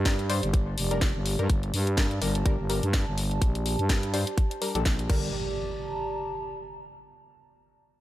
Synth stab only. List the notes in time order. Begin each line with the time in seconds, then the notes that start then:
0.06 G3 D4 A#4
0.30 G3 D4 C5
0.91 G3 D4 A#4
1.39 G3 D4 A#4
1.98 G3 D4 A#4
2.22 G3 D4 A#4
2.46 G3 D4 A#4
2.70 G3 D4 A#4
3.90 G3 D4 A#4
4.14 G3 D4 C5
4.62 G3 D4 A#4
4.75 G3 D4 A4
5.10 G3 D4 A#4